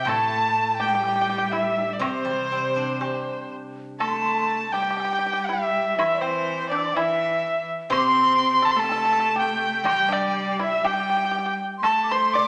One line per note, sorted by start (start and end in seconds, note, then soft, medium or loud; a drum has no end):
0.05 2.00 A2 medium
0.05 0.79 A3 medium
0.05 0.76 A5 medium
0.05 0.82 A5 loud
0.05 high woodblock medium
0.09 0.76 A4 medium
0.74 1.49 G5 medium
0.80 2.01 G3 medium
0.80 0.86 G4 medium
0.80 1.54 G5 medium
0.88 0.93 G4 medium
0.95 1.01 G4 medium
1.03 1.07 G4 soft
1.03 low woodblock soft
1.08 1.14 G4 medium
1.16 1.20 G4 soft
1.21 1.28 G4 medium
1.29 1.36 G4 medium
1.38 1.44 G4 medium
1.49 1.81 E4 medium
1.49 1.96 E5 medium
1.49 1.94 E5 medium
1.81 1.98 D4 medium
1.93 2.03 D5 medium
1.98 4.99 C3 medium
1.98 3.51 C3 medium
1.98 2.74 C4 medium
1.98 3.46 C5 medium
1.98 3.52 C5 medium
1.98 high woodblock medium
2.25 4.25 G3 soft
2.52 4.51 C4 soft
2.74 2.87 B3 medium
2.74 4.75 D4 soft
2.87 2.99 A#3 medium
2.99 3.48 A3 medium
2.99 5.00 G4 soft
2.99 high woodblock soft
2.99 low woodblock soft
3.99 4.71 A3 medium
3.99 4.71 A4 medium
3.99 4.09 A5 medium
3.99 4.73 A5 medium
3.99 high woodblock medium
4.08 4.15 C6 medium
4.14 4.23 A5 medium
4.22 4.33 C6 medium
4.32 4.41 A5 medium
4.39 4.48 C6 medium
4.46 4.75 A5 medium
4.72 5.97 G3 medium
4.72 4.81 G4 medium
4.72 5.48 G5 medium
4.72 5.96 G5 medium
4.82 4.89 G4 soft
4.90 4.96 G4 medium
4.97 5.03 G4 soft
4.97 low woodblock soft
5.05 5.11 G4 medium
5.13 5.18 G4 soft
5.19 5.25 G4 medium
5.26 5.32 G4 soft
5.33 5.41 G4 medium
5.46 5.95 E4 medium
5.46 5.96 E5 medium
5.96 6.94 E3 medium
5.96 6.22 E4 medium
5.96 6.23 E5 medium
5.96 6.16 E5 medium
5.96 high woodblock medium
6.14 6.20 D5 soft
6.19 6.68 C4 medium
6.19 6.71 C5 medium
6.19 6.69 C5 medium
6.69 6.95 D4 medium
6.69 6.98 D5 medium
6.69 6.72 D5 medium
6.69 6.76 G6 soft
6.76 6.80 E6 soft
6.81 6.85 D6 soft
6.85 6.91 A5 soft
6.85 6.87 C6 soft
6.91 7.64 E3 medium
6.91 7.68 E5 medium
6.91 6.95 G5 soft
6.96 7.65 E4 medium
6.96 7.69 E5 medium
6.96 low woodblock soft
7.90 10.83 C3 medium
7.90 8.77 C4 loud
7.90 8.59 C5 medium
7.90 7.99 C6 medium
7.90 8.66 C6 loud
7.90 high woodblock medium
7.98 8.06 D6 medium
8.05 8.78 C6 medium
8.62 8.75 A4 medium
8.62 8.73 A5 loud
8.71 8.81 C6 medium
8.75 9.86 A3 loud
8.75 8.83 A4 medium
8.75 9.32 A5 medium
8.80 9.38 A5 loud
8.84 8.90 A4 medium
8.89 8.96 A4 medium
8.89 low woodblock soft
8.97 9.04 A4 medium
9.05 9.11 A4 medium
9.12 9.19 A4 medium
9.20 9.27 A4 medium
9.32 9.82 G4 medium
9.32 9.41 A5 medium
9.39 9.83 G5 medium
9.39 9.87 G5 medium
9.84 12.48 G3 medium
9.84 10.82 G3 loud
9.84 10.08 G4 medium
9.84 10.14 G5 loud
9.84 10.56 G5 medium
9.84 high woodblock medium
10.09 10.55 D4 medium
10.09 10.60 D5 medium
10.59 10.82 E4 medium
10.59 10.83 E5 medium
10.59 10.88 E5 medium
10.83 11.54 G3 medium
10.83 10.91 G4 medium
10.83 11.55 G5 medium
10.83 low woodblock soft
10.87 11.60 G5 medium
10.93 10.99 G4 medium
11.00 11.06 G4 medium
11.09 11.15 G4 soft
11.17 11.22 G4 soft
11.25 11.30 G4 soft
11.31 11.37 G4 medium
11.38 11.44 G4 soft
11.46 11.52 G4 soft
11.78 12.48 A3 medium
11.78 11.86 C6 medium
11.83 12.07 A4 medium
11.83 12.13 A5 loud
11.83 12.02 A5 medium
11.83 high woodblock medium
12.03 12.12 D6 medium
12.10 12.33 C5 medium
12.10 12.48 C6 medium
12.10 12.35 C6 medium
12.34 12.48 D5 medium
12.34 12.48 D6 medium